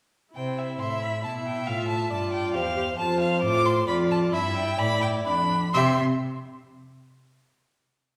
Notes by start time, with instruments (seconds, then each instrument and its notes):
0.34 cello C3, viola E4, violin C5 G5
0.58 violin E5
0.79 cello A2, violin E5 C6
1.02 violin B5
1.24 cello B2, viola E4, violin E5 A5
1.45 violin G5
1.66 cello A2, viola F4, violin F5
1.88 violin A5
2.10 cello G2, viola F4, violin D5 A5
2.33 violin G5
2.54 cello E2, viola G4, violin C5 F5
2.76 viola G4
2.98 cello F2, viola F4, violin C5 A5
3.20 violin F5
3.42 cello A2, viola F4, violin D6
3.65 violin C6
3.87 cello F2, viola F4, violin D5 B5
4.11 violin A5
4.32 cello G2, viola E4, violin E5 B5
4.56 violin G5
4.79 cello A2, violin D5 B5
5.02 violin G5
5.25 cello F2, viola D4, violin D5 B5
5.73 cello C3, viola G4, violin E5 C6